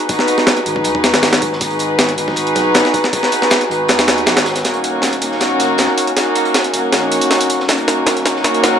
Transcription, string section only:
0.09 0.64 D#4 medium
0.09 0.64 F#4 medium
0.09 0.64 G#4 medium
0.09 0.64 B4 loud
0.66 1.59 D#4 medium
0.66 1.59 F#4 medium
0.66 1.59 G#4 medium
0.66 1.59 B4 medium
1.62 2.16 D#4 medium
1.62 2.16 F#4 medium
1.62 2.16 G#4 medium
1.62 2.16 B4 medium
2.18 3.11 D#4 medium
2.18 3.11 F#4 medium
2.18 3.11 G#4 medium
2.18 3.11 B4 loud
3.12 3.68 D#4 medium
3.12 3.68 F#4 medium
3.12 3.68 G#4 medium
3.12 3.68 B4 loud
3.69 4.62 D#4 medium
3.69 4.63 F#4 medium
3.69 4.63 G#4 medium
3.69 4.62 B4 medium
4.65 5.20 A#3 medium
4.65 5.20 C#4 medium
4.65 5.20 D#4 medium
4.65 5.20 F#4 medium
5.22 6.15 A#3 medium
5.22 6.15 C#4 medium
5.22 6.14 D#4 medium
5.22 6.15 F#4 loud
6.16 6.71 A#3 loud
6.16 6.71 C#4 medium
6.16 6.71 D#4 medium
6.16 6.71 F#4 loud
6.74 7.67 A#3 medium
6.74 7.67 C#4 medium
6.74 7.67 D#4 medium
6.74 7.67 F#4 loud
7.69 8.24 A#3 medium
7.69 8.24 C#4 medium
7.69 8.24 D#4 medium
7.69 8.24 F#4 medium
8.26 8.79 A#3 loud
8.26 8.79 C#4 medium
8.26 8.79 D#4 medium
8.26 8.79 F#4 loud

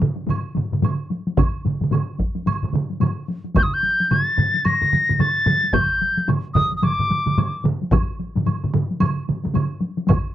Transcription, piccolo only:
3.57 3.64 G6 medium
3.63 3.75 D#6 medium
3.74 4.12 G6 medium
4.10 4.67 A6 medium
4.65 5.22 A#6 loud
5.20 5.75 A6 medium
5.74 6.28 G6 medium
6.54 6.75 D#6 medium
6.77 6.85 D#6 medium
6.83 7.65 D6 medium

